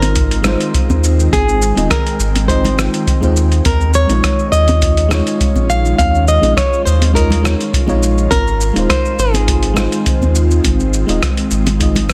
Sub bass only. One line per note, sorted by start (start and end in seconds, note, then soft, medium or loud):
0.00 0.56 G#1 medium
0.89 1.28 D#2 medium
1.32 1.72 G#1 loud
1.77 1.88 D#1 medium
2.19 2.89 G#1 medium
3.21 3.61 D#2 medium
3.65 4.05 D#2 loud
4.09 4.21 A#1 medium
4.52 5.21 D#2 medium
5.55 5.94 A#1 loud
5.99 6.39 D#2 medium
6.42 6.54 A#1 medium
6.86 7.55 D#2 medium
7.89 8.28 A#1 medium
8.31 8.71 G#1 loud
8.76 8.87 D#1 medium
9.18 9.88 G#1 medium
10.20 10.60 D#2 loud
10.64 11.04 G#1 medium
11.08 11.20 D#1 medium
11.51 12.13 G#1 medium